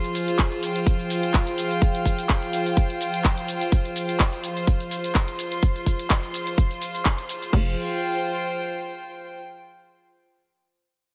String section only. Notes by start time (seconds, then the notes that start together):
Already playing: F4 C5 C6
0.67 G5
4.48 C6
7.53 F4
7.61 C5
7.69 G5